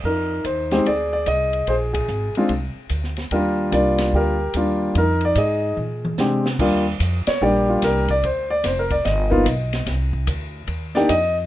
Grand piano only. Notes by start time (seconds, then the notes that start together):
0.05 D#4 A#4
0.45 C5
0.72 G#3 C4 D#4 G4 C5
0.87 G#4 D5
1.13 D5
1.28 D#5
1.68 G#4 C5
1.93 G#4
2.37 G#3 C4 D4 F4
3.32 G3 A#3 D4 F4 G4 A#4
3.71 G3 A#3 D4 F4 D5
4.15 G4 A#4
4.56 G3 A#3 D4 F4
4.97 D#4 A#4
5.25 D5
5.38 G#4 D#5
6.20 G#3 C4 D4 G4
6.60 G3 A#3 D4 F4
7.27 C#5
7.42 G3 A#3 D4 G4 D5
7.69 F4
7.84 A#4
8.11 D5
8.25 C5
8.50 D5
8.66 C5
8.79 A#4
8.91 D5
9.05 D#5
9.30 A#3 B3 D#4 F4
10.95 A#3 D4 D#4 G4 D5
11.09 D#5